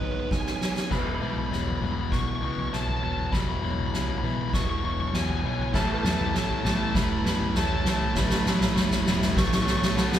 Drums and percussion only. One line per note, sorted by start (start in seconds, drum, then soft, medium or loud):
0.01 floor tom medium
0.31 kick medium
0.31 snare soft
0.46 snare medium
0.61 snare medium
0.76 snare medium
0.91 kick medium
0.91 snare soft
0.91 floor tom medium
0.91 crash loud
1.22 mid tom medium
1.37 floor tom medium
1.52 snare soft
1.67 floor tom medium
1.82 floor tom medium
1.82 mid tom medium
2.12 kick medium
2.12 snare soft
2.12 floor tom medium
2.57 floor tom medium
2.73 snare medium
2.73 floor tom medium
2.87 floor tom medium
3.18 floor tom medium
3.33 kick medium
3.33 snare medium
3.33 floor tom medium
3.63 mid tom medium
3.78 floor tom medium
3.94 snare medium
4.09 floor tom medium
4.23 floor tom medium
4.23 mid tom medium
4.53 kick medium
4.53 snare medium
4.53 floor tom medium
4.99 floor tom medium
5.14 snare medium
5.14 floor tom medium
5.29 floor tom medium
5.59 floor tom medium
5.74 kick loud
5.74 snare medium
5.74 floor tom medium
5.74 crash medium
6.04 snare medium
6.04 mid tom medium
6.19 floor tom medium
6.35 snare medium
6.50 floor tom medium
6.65 snare medium
6.65 floor tom medium
6.65 mid tom medium
6.95 kick loud
6.95 snare medium
6.95 floor tom medium
7.25 snare medium
7.40 floor tom medium
7.55 snare medium
7.55 floor tom medium
7.70 floor tom medium
7.85 snare medium
8.00 floor tom medium
8.15 kick loud
8.15 snare medium
8.15 floor tom medium
8.30 snare loud
8.46 snare loud
8.46 mid tom medium
8.61 snare medium
8.61 floor tom medium
8.61 mid tom medium
8.76 snare loud
8.76 mid tom medium
8.91 snare loud
8.91 floor tom medium
9.06 snare loud
9.06 floor tom medium
9.06 mid tom medium
9.22 snare loud
9.37 kick loud
9.37 snare loud
9.37 floor tom medium
9.52 snare loud
9.67 snare medium
9.67 floor tom medium
9.82 snare loud
9.82 floor tom medium
9.97 snare loud
10.12 snare loud